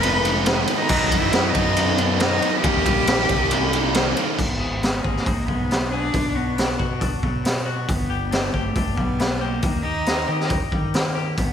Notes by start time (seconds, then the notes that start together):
Already playing: F1 G#2 D#3 G#3 B3 D#4
0.01 G#2 D#3 G#3 B3 D#4 B4, ride
0.25 ride
0.45 D#3 G#3 B3 D#4, snare, ride
0.66 G#3 B3 D#4, ride
0.78 D#4
0.88 B1 B2 D#3 F#3 B3 D#4, kick, crash
1.10 F#2 F#3 B3 D#4, kick, ride
1.20 E4
1.31 B2 D#3 F#3 B3 D#4, snare, ride
1.51 D#4, ride
1.55 F#2 F#3 B3, kick
1.75 B2 D#3 F#3 B3 D#4, ride
1.98 B3, ride
2.19 D#3 F#3 B3 D#4, snare, ride
2.41 F#3 B3 D#4, ride
2.61 D#2 D#3 G3 A#3 D#4 G4, kick, ride
2.84 A#1 G3 A#3 D#4, kick, ride
3.07 D#3 G3 A#3 D#4, snare, ride
3.29 C2 G3 A#3 D#4, kick, ride
3.51 D#3 G3 A#3 D#4, ride
3.73 ride
3.94 D#3 G3 A#3 D#4, snare, ride
4.16 G3 A#3 D#4, ride
4.38 G#1 G#2 B3, kick, crash
4.60 G#4
4.82 B3 D#4, snare, open hi-hat
5.03 G#1 A#3 G#4, kick
5.16 snare
5.26 G#1 D#4, kick, open hi-hat
5.46 B1 G#3 B3, kick
5.71 B3, snare, open hi-hat
5.92 D4 G#4
6.14 B1 B2, kick, open hi-hat
6.35 B3 F#4
6.57 D4, snare, open hi-hat
6.70 snare
6.79 B2 F#4, kick
7.00 B1 D4, kick, open hi-hat
7.23 B2 F#3, kick
7.44 B3, snare, open hi-hat
7.66 F#4
7.88 G1 G2 B3, kick, open hi-hat
8.10 G4
8.30 B3 D4, snare, open hi-hat
8.54 G1 A3 G4, kick
8.75 G1 D4, kick, open hi-hat
8.95 B1 G3 B3, kick
9.19 B3, snare, open hi-hat
9.39 A#3 G4
9.62 D#2 D#3, kick, open hi-hat
9.83 D#4 G4
10.06 D#4, snare, open hi-hat
10.28 D#3 G4
10.40 snare
10.49 D#2 D#4, kick, open hi-hat
10.72 D#3 G3, kick
10.94 A#3, snare, open hi-hat
11.15 G4
11.37 G#1 G#2 B3, kick, open hi-hat